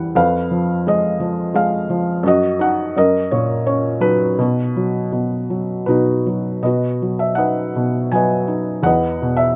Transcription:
Already playing: E2 E3 G3 F#5
0.15 F2 B4 F5
0.51 F3
0.87 G#3 D#5
1.20 F3
1.54 G#3 F5
1.90 F3
2.23 F#2 F#4
2.28 D#5
2.59 D#4 F#5
2.97 F#2 A#4 D#5
3.31 A#2 C#5
3.67 C#4 C#5
4.01 F#3 D#4 B4
4.39 B2
4.76 F#3
5.12 B2
5.50 F#3
5.86 B2 D#4 F#4 B4
6.26 F#3
6.63 B2 F#4 B4 D#5
7.02 F#3
7.19 E5
7.35 D#4 B4 D#5 F#5
7.76 B2
8.12 F#3 B4 D#5 G#5
8.48 D#4
8.83 E2 B4 D#5 F#5
9.22 B2
9.37 E5

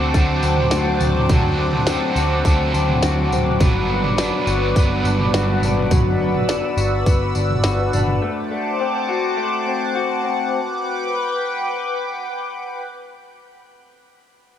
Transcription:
Already playing: D2 F#3 A3 C4 D4 F#4 A4 C5 F#5 A5 D6
0.13 D2 D3 F#3 A3 C4, kick, tambourine
0.17 D4 A4
0.43 D2 C4, tambourine
0.57 floor tom
0.71 D2 F#4, snare, tambourine
1.00 D2 C4, floor tom, tambourine
1.15 floor tom
1.29 D2 D3 F#3 C4 D4 A4, kick, floor tom, tambourine
1.58 A3
1.73 floor tom
1.86 F#3 C4 D4 A4, snare, tambourine
2.15 D2 C4 D4 F#4 A4, tambourine
2.43 D2 D3 F#3 A3 C4 D4 A5, kick, tambourine
2.48 A4
2.74 D2 C4, tambourine
2.89 floor tom
3.02 D2 F#4, snare, tambourine
3.31 D2 C4, floor tom, tambourine
3.46 floor tom
3.59 G1 G2 D3 F#3 B3 D4 B4 D5, kick, floor tom, tambourine
3.90 B3
4.04 floor tom
4.17 F#3 B3 D4 B4 B5, snare, tambourine
4.46 G1 F#3 B3 D4 F#4 B4, tambourine
4.75 G1 G2 D3 F#3 B3 D4, kick, tambourine
4.79 B4
5.04 G1 D4, tambourine
5.20 floor tom
5.33 G1 F#4, snare, tambourine
5.62 G1 D4, floor tom, tambourine
5.77 floor tom
5.91 G1 F#3 E6, kick, floor tom, tambourine
6.20 B3
6.35 floor tom
6.48 D4, snare, tambourine
6.77 G1 F#4, tambourine
7.06 G1 B3, kick, tambourine
7.35 G1 D4, tambourine
7.50 floor tom
7.64 G1 F#4, snare, tambourine
7.93 G1 D4, floor tom, tambourine
8.07 floor tom
8.22 A3 C5 F#5 A5 D6
8.51 A3
8.80 C4
9.08 F#4
9.37 A3
9.66 C4
9.95 F#4
10.24 C4
10.53 B4 G5 D6

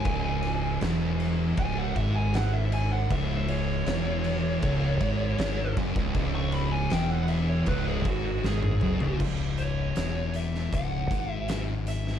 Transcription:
Already playing: G#5
0.05 C#1 C#2, kick, ride
0.43 ride
0.81 E1 E2, snare, ride
1.20 ride
1.57 C#1 C#2 G#5, kick, ride
1.78 F#5
1.96 G#1 G#2 E5, kick, ride
2.16 G#5
2.34 F#5, snare, ride
2.53 E5
2.72 G#5, ride
2.93 F#5
3.10 C#1 C#2 E5, kick, ride
3.48 C#5, ride
3.86 E1 E2, snare, ride
4.24 ride
4.62 C#1 C#2, kick, ride
5.00 G#1 G#2, kick, ride
5.38 G#1 G#2, snare, ride
5.77 F#1 F#2, kick, ride
5.96 C#1 C#2, kick
6.14 C#1 C#2, kick, ride
6.35 C#6
6.52 B5, ride
6.72 G#5
6.90 E1 E2 G5, snare, ride
7.10 F#5
7.28 E5, ride
7.49 C#5
7.66 C#1 C#2 B4, kick, ride
7.87 G#4
8.05 G#1 G#2 F#4, kick, ride
8.43 G#1 G#2 G#4, snare
8.63 high tom
8.81 F#1 F#2, mid tom
9.00 C#1 C#2, floor tom
9.20 C#1 C#2, kick, crash
9.58 C#5, closed hi-hat
9.96 E1 E2, snare, closed hi-hat
10.34 E5, closed hi-hat
10.55 snare
10.72 C#1 C#2 F#5, kick, closed hi-hat
11.10 G#1 G#2, kick, closed hi-hat
11.31 E5
11.48 E5, snare, closed hi-hat
11.87 E5, closed hi-hat
12.07 snare

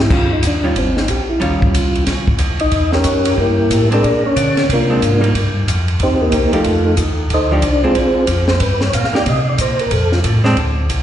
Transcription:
0.01 E4
0.09 G2 D#3 G3 C#4 F4, kick, crash
0.33 D#4
0.43 D#2, kick, hi-hat pedal, ride
0.47 D4
0.63 D#3 G3 C#4 F4
0.76 G#1 C4, kick, ride
0.97 D#4, snare
1.08 A#1 G4, kick, hi-hat pedal, ride
1.30 E4
1.40 D#2 D#3 G3 C#4 F4, kick, ride
1.62 kick
1.74 C2, kick, hi-hat pedal, ride
1.95 ride
2.06 C#2, kick, snare, ride
2.27 kick
2.38 D#2, kick, hi-hat pedal, ride
2.51 C#2
2.60 A#1 D#4 D#5, ride
2.71 E2, kick, ride
2.92 C#4 G4 A#4 C#5, snare
3.04 F#2, kick, hi-hat pedal, ride
3.25 ride
3.38 G2 A#3 E4 G4 A#4, kick
3.70 A2, kick, hi-hat pedal, ride
3.91 G#3 C4 D4 G#4 A#4 D5, ride
4.04 A#2, kick, ride
4.26 C#4 C#5
4.36 D3, kick, hi-hat pedal, ride
4.57 D3, snare, ride
4.69 C3 A#4, kick, ride
4.73 A#3 D4 F4
4.90 G#3 C4 D4
5.02 G#2, kick, hi-hat pedal, ride
5.20 G3 A#3 D#4, ride
5.35 G2, kick, ride
5.67 F2, kick, hi-hat pedal, ride
5.88 ride
6.00 D#2 C4 D#4 C5, kick, ride
6.04 G4
6.22 A#3 D#4 G4 A#4
6.32 C2, kick, hi-hat pedal, ride
6.52 C2 F3 A3 D#4 F4 G4 A4, ride
6.64 F2, kick, ride
6.97 D#2, kick, hi-hat pedal, ride
7.30 D2 A4 C5, kick, ride
7.34 D#4 D#5
7.51 F3 A3 D4 D#4 G4 D5
7.62 C2, kick, hi-hat pedal, ride
7.83 G#3 C4 D4 F4 G#4 C5
7.95 A#1, kick, ride
8.27 F2, kick, hi-hat pedal, ride
8.48 C5, snare
8.60 G2 B4, kick, ride
8.81 C#5, snare
8.93 A#2 F5, kick, hi-hat pedal, ride
9.04 snare
9.13 A#3 D#4 G4 D5, snare
9.26 C3 D#5, kick, ride
9.49 D5
9.58 A#2 C5, kick, hi-hat pedal, ride
9.79 A#4, ride
9.91 F2 A4, kick, ride
10.12 F4, snare
10.24 A2, kick, hi-hat pedal, ride
10.44 G#3 C4 D4, snare
10.57 D2, kick, ride
10.90 C2, kick, hi-hat pedal, ride

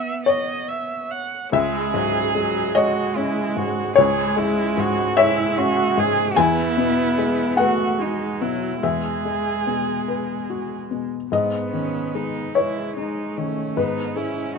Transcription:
Already playing: B3 C#4 B4 E5
0.26 C#5 D#5
0.69 E5
1.11 F#5
1.52 C#2 G#3 G#4 E5
1.94 G#2 F#3
2.35 F#3 G#3
2.75 G#3 F#4 C#5 D#5
3.16 C#4 E4
3.57 G#2 F#4
3.96 C#2 G#3 G#4 C#5
4.37 G#3 E4
4.78 G#2 F#4
5.16 G#3 E4 C#5 E5
5.58 C#4 F#4
5.98 G#2 G#4
6.36 E2 B3 E4 G#5
6.77 B2
7.18 G#3
7.57 A3 F#4 B4 F#5
8.00 G#3 D#4 F#4
8.41 B2 F#3 E4
8.82 E2 G#3 G#4 E5
9.25 G#3
9.67 B2
10.08 B4
10.50 F#4
10.91 B2
11.32 G#2 B3 D#5
11.73 D#3 C#4
12.15 G#3 D#4
12.55 G#3 E4 B4 C#5
12.97 G#3 D#4
13.38 D#3 A3 C#4
13.77 G#2 B3 D#4 B4
14.16 G#3 C#4 E4

